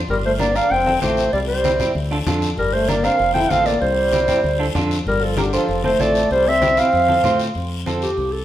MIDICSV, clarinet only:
0, 0, Header, 1, 2, 480
1, 0, Start_track
1, 0, Key_signature, -1, "major"
1, 0, Tempo, 311042
1, 133, Time_signature, 4, 2, 24, 8
1, 13034, End_track
2, 0, Start_track
2, 0, Title_t, "Clarinet"
2, 0, Program_c, 0, 71
2, 161, Note_on_c, 0, 70, 91
2, 263, Note_off_c, 0, 70, 0
2, 397, Note_on_c, 0, 72, 94
2, 500, Note_off_c, 0, 72, 0
2, 626, Note_on_c, 0, 74, 95
2, 866, Note_on_c, 0, 77, 104
2, 889, Note_off_c, 0, 74, 0
2, 1100, Note_on_c, 0, 79, 103
2, 1123, Note_off_c, 0, 77, 0
2, 1558, Note_off_c, 0, 79, 0
2, 1568, Note_on_c, 0, 72, 87
2, 2018, Note_off_c, 0, 72, 0
2, 2050, Note_on_c, 0, 74, 94
2, 2159, Note_off_c, 0, 74, 0
2, 2283, Note_on_c, 0, 72, 83
2, 2959, Note_off_c, 0, 72, 0
2, 3985, Note_on_c, 0, 70, 95
2, 4214, Note_on_c, 0, 72, 87
2, 4237, Note_off_c, 0, 70, 0
2, 4457, Note_on_c, 0, 74, 94
2, 4481, Note_off_c, 0, 72, 0
2, 4701, Note_on_c, 0, 77, 109
2, 4724, Note_off_c, 0, 74, 0
2, 5147, Note_off_c, 0, 77, 0
2, 5156, Note_on_c, 0, 79, 94
2, 5402, Note_on_c, 0, 77, 106
2, 5425, Note_off_c, 0, 79, 0
2, 5650, Note_on_c, 0, 74, 94
2, 5673, Note_off_c, 0, 77, 0
2, 5879, Note_off_c, 0, 74, 0
2, 5888, Note_on_c, 0, 72, 91
2, 7270, Note_off_c, 0, 72, 0
2, 7838, Note_on_c, 0, 70, 96
2, 8081, Note_on_c, 0, 69, 87
2, 8104, Note_off_c, 0, 70, 0
2, 8318, Note_on_c, 0, 67, 79
2, 8341, Note_off_c, 0, 69, 0
2, 8539, Note_off_c, 0, 67, 0
2, 8549, Note_on_c, 0, 69, 92
2, 8989, Note_off_c, 0, 69, 0
2, 9034, Note_on_c, 0, 72, 89
2, 9268, Note_on_c, 0, 74, 93
2, 9292, Note_off_c, 0, 72, 0
2, 9742, Note_off_c, 0, 74, 0
2, 9749, Note_on_c, 0, 72, 97
2, 10001, Note_on_c, 0, 76, 105
2, 10024, Note_off_c, 0, 72, 0
2, 10475, Note_on_c, 0, 77, 101
2, 10498, Note_off_c, 0, 76, 0
2, 11425, Note_off_c, 0, 77, 0
2, 12385, Note_on_c, 0, 67, 80
2, 12852, Note_on_c, 0, 69, 78
2, 12876, Note_off_c, 0, 67, 0
2, 13034, Note_off_c, 0, 69, 0
2, 13034, End_track
0, 0, End_of_file